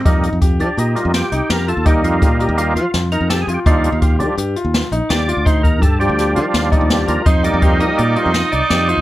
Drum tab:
HH |xxxxxxxxxx|xxxxxxxxxx|xxxxxxxxxx|xxxxxxxxxx|
SD |------o-o-|------o-o-|------o-o-|----o-o-o-|
BD |o-o-------|o-o-------|o-o-------|ooo----o--|

HH |xxxxxxxxxx|
SD |------o-o-|
BD |o-o-------|